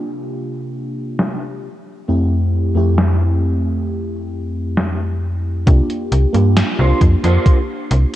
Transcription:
0.00 1.66 C3 medium
0.00 1.66 A#3 medium
0.00 1.66 D4 medium
0.00 1.66 F4 medium
0.00 1.66 G4 medium
1.19 snare loud
2.08 2.70 F2 medium
2.08 2.70 A3 medium
2.08 2.71 C4 medium
2.08 2.71 E4 medium
2.08 2.71 G4 medium
2.74 5.61 F2 medium
2.74 5.61 A3 medium
2.74 5.61 C4 medium
2.74 5.62 E4 medium
2.74 5.62 G4 loud
2.98 snare loud
4.77 snare loud
5.66 5.81 C2 loud
5.66 6.29 A#3 medium
5.66 6.29 D4 medium
5.66 6.29 F4 medium
5.66 6.29 G4 medium
5.66 kick loud
5.66 closed hi-hat medium
5.90 closed hi-hat soft
6.12 6.26 C2 medium
6.12 closed hi-hat medium
6.33 6.63 G2 medium
6.33 8.16 A#3 medium
6.33 8.16 D4 medium
6.33 8.16 F4 medium
6.33 8.16 G4 loud
6.33 closed hi-hat medium
6.57 snare loud
6.57 closed hi-hat medium
6.79 6.93 C2 loud
6.79 7.01 D4 medium
6.79 7.01 F4 medium
6.79 7.01 A#4 medium
6.79 7.01 C5 loud
7.01 7.16 F2 medium
7.01 kick medium
7.01 closed hi-hat medium
7.23 7.38 F2 loud
7.23 7.57 D4 loud
7.23 7.57 F4 loud
7.23 7.57 A#4 loud
7.23 7.57 C5 loud
7.23 closed hi-hat medium
7.46 kick loud
7.46 closed hi-hat medium
7.90 8.05 C2 loud
7.90 muted clean electric guitar stroke loud
7.90 closed hi-hat medium

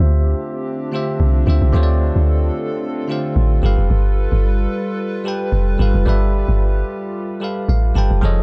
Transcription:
0.00 0.35 D2 loud
0.00 0.44 D3 loud
0.00 3.59 D3 medium
0.00 0.44 A3 loud
0.00 3.59 C4 medium
0.00 3.59 D4 medium
0.00 0.45 F4 loud
0.00 8.19 F4 medium
0.00 0.45 G4 loud
0.00 1.72 G4 medium
0.00 0.46 C5 loud
0.00 0.46 E5 loud
0.92 1.37 D3 medium
0.92 1.37 A3 medium
0.92 1.37 F4 medium
0.92 1.38 G4 medium
0.92 1.38 C5 medium
0.92 1.39 E5 medium
1.20 1.44 C2 loud
1.46 1.60 D2 loud
1.46 1.68 D3 medium
1.46 1.69 A3 medium
1.46 1.69 F4 medium
1.46 1.70 G4 medium
1.46 1.70 C5 medium
1.46 1.70 E5 medium
1.62 1.73 C2 loud
1.73 2.11 D2 loud
1.73 2.60 D3 loud
1.73 2.61 A3 loud
1.73 2.61 F4 loud
1.73 2.62 G4 loud
1.73 3.61 A4 loud
1.73 2.62 C5 loud
1.73 1.82 C#5 loud
1.83 2.66 D5 loud
2.16 2.51 D2 medium
3.08 3.53 D3 medium
3.08 3.53 A3 medium
3.08 3.54 F4 medium
3.08 3.54 G4 medium
3.08 3.54 C5 medium
3.08 3.55 F5 loud
3.36 3.60 A1 loud
3.62 3.76 G1 loud
3.62 4.50 G3 medium
3.62 8.19 G3 medium
3.62 4.50 G4 medium
3.62 5.77 A4 medium
3.62 4.51 A4 medium
3.62 8.19 B4 loud
3.62 4.51 B4 medium
3.62 4.52 F5 loud
3.78 3.89 F1 medium
3.90 4.28 G1 loud
4.32 4.67 G1 loud
5.24 5.69 G3 medium
5.24 5.70 G4 medium
5.24 5.70 A4 medium
5.24 5.71 B4 medium
5.24 5.71 G5 medium
5.52 5.76 F1 medium
5.78 5.93 G1 loud
5.78 6.01 G3 medium
5.78 6.01 G4 medium
5.78 8.20 G4 medium
5.78 6.02 A4 medium
5.78 6.02 B4 medium
5.78 6.03 F5 medium
5.94 6.05 F1 loud
6.05 6.44 G1 loud
6.05 6.93 G3 loud
6.05 6.93 G4 loud
6.05 6.94 A4 loud
6.05 6.94 B4 loud
6.05 6.95 E5 loud
6.48 6.83 G1 loud
7.40 7.85 G3 medium
7.40 7.86 G4 medium
7.40 7.86 A4 medium
7.40 7.87 B4 medium
7.40 7.68 F5 medium
7.69 7.93 A1 loud
7.69 7.94 F5 medium
7.94 8.09 G1 loud
7.94 8.17 G3 medium
7.94 8.18 G4 medium
7.94 8.18 A4 medium
7.94 8.19 B4 medium
7.94 8.19 G5 medium
7.94 8.21 A5 medium
8.10 8.21 F1 loud
8.21 8.43 F1 loud
8.21 8.43 F3 loud
8.21 8.43 F3 medium
8.21 8.43 A3 medium
8.21 8.43 C#4 medium
8.21 8.43 D#4 medium
8.21 8.43 F4 loud
8.21 8.43 G#4 loud
8.21 8.43 A4 loud
8.21 8.43 C#5 loud
8.21 8.43 D#5 loud
8.21 8.43 G#5 medium

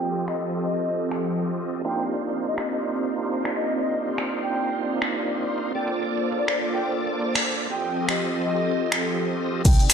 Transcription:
0.00 1.83 F3 medium
0.00 1.82 C4 medium
0.00 1.83 C4 medium
0.00 1.82 F4 medium
0.00 1.82 G4 medium
0.00 5.71 G4 medium
0.00 1.82 A4 medium
0.00 1.83 A4 medium
0.00 1.82 D#5 medium
0.00 0.25 G5 medium
0.28 0.44 D#5 medium
0.28 finger snap medium
0.63 1.12 D#5 medium
1.11 finger snap medium
1.85 5.73 A#3 medium
1.85 5.71 C4 medium
1.85 5.72 D4 medium
1.85 5.72 D#4 medium
1.85 5.72 F4 medium
1.85 5.72 C5 medium
1.85 7.66 D5 medium
1.85 2.03 G5 medium
2.48 2.56 D#5 medium
2.58 2.67 D#5 medium
2.58 finger snap medium
2.73 2.79 D#5 medium
3.45 finger snap medium
3.56 3.74 D#5 medium
3.80 3.98 D#5 medium
4.18 finger snap medium
4.43 4.92 G5 medium
5.02 finger snap medium
5.75 7.68 A#3 medium
5.75 7.68 D4 medium
5.75 7.68 F4 medium
5.75 7.68 A4 medium
5.75 7.68 C5 medium
5.75 7.68 D5 medium
5.75 5.93 G5 medium
6.38 6.46 D5 medium
6.48 6.57 D5 medium
6.48 finger snap medium
6.63 6.69 D5 medium
6.73 6.91 G5 medium
7.35 finger snap medium
7.70 9.63 F3 medium
7.70 9.63 C4 medium
7.70 9.63 F4 medium
7.70 9.63 G4 medium
7.70 9.63 A4 medium
7.70 9.63 D#5 medium
7.70 8.06 G5 medium
8.09 8.25 D#5 medium
8.09 finger snap medium
8.43 8.92 D#5 medium
8.92 finger snap medium
9.65 9.75 C2 loud
9.65 9.93 C3 medium
9.65 9.93 G3 medium
9.65 9.93 D#4 loud
9.65 9.93 D5 medium
9.65 9.83 G5 medium
9.65 kick loud
9.65 closed hi-hat medium
9.65 mid tom medium
9.65 crash loud
9.65 shaker medium
9.80 shaker soft
9.89 9.93 C4 medium
9.89 9.93 D#4 medium
9.89 9.93 F4 medium
9.89 9.93 A#4 medium
9.89 9.93 D5 medium
9.89 finger snap medium
9.89 open hi-hat medium
9.89 shaker medium

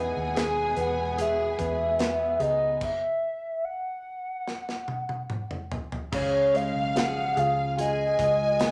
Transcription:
0.00 0.12 E2 loud
0.00 2.78 B2 medium
0.00 2.78 G#3 medium
0.00 1.54 B3 medium
0.00 1.99 B3 medium
0.00 2.78 B3 medium
0.00 0.77 D#4 medium
0.00 2.77 E4 medium
0.00 0.36 G#4 medium
0.00 2.78 G#4 medium
0.00 0.41 F#5 loud
0.00 2.77 G#5 medium
0.17 0.73 D#2 medium
0.35 1.16 G#4 medium
0.35 1.17 G#4 medium
0.35 snare loud
0.35 closed hi-hat medium
0.39 0.82 G#5 loud
0.76 1.55 E2 loud
0.76 1.96 B4 medium
0.76 closed hi-hat medium
0.81 1.23 F#5 loud
1.17 2.38 G#4 medium
1.17 2.89 G#4 medium
1.17 2.44 E5 medium
1.17 closed hi-hat medium
1.58 2.36 E2 medium
1.58 2.77 B3 medium
1.58 kick medium
1.58 closed hi-hat medium
1.98 2.89 B3 medium
1.98 2.78 B4 medium
1.98 snare loud
1.98 closed hi-hat medium
2.40 2.78 C#2 medium
2.40 2.89 D#4 medium
2.40 2.79 G#4 medium
2.40 2.82 D#5 medium
2.40 closed hi-hat medium
2.81 3.66 E5 loud
2.81 kick loud
2.81 crash medium
3.65 5.72 F#5 medium
4.48 snare medium
4.69 snare medium
4.88 high tom medium
5.09 high tom medium
5.30 mid tom medium
5.51 mid tom medium
5.72 floor tom medium
5.92 floor tom medium
6.12 6.74 C#2 loud
6.12 8.71 C#3 medium
6.12 6.95 G#4 medium
6.12 6.58 C#5 loud
6.12 7.74 F5 loud
6.12 kick loud
6.12 crash loud
6.54 8.15 G#3 medium
6.54 7.00 F5 loud
6.54 closed hi-hat medium
6.74 7.32 B1 loud
6.96 8.56 F3 medium
6.96 7.77 G#4 medium
6.96 7.40 F#5 loud
6.96 snare loud
6.96 closed hi-hat medium
7.36 8.15 C#2 loud
7.36 8.18 F4 medium
7.36 8.58 G#4 medium
7.36 7.79 F5 loud
7.36 closed hi-hat medium
7.77 8.71 F4 medium
7.77 8.71 G#4 medium
7.77 8.71 D#5 loud
7.77 8.71 G#5 loud
7.77 closed hi-hat loud
8.19 8.71 C#2 loud
8.19 8.71 G#3 medium
8.19 8.71 F4 medium
8.19 kick medium
8.19 closed hi-hat medium
8.60 8.71 B3 medium
8.60 8.71 G#4 medium
8.60 snare loud
8.60 closed hi-hat loud

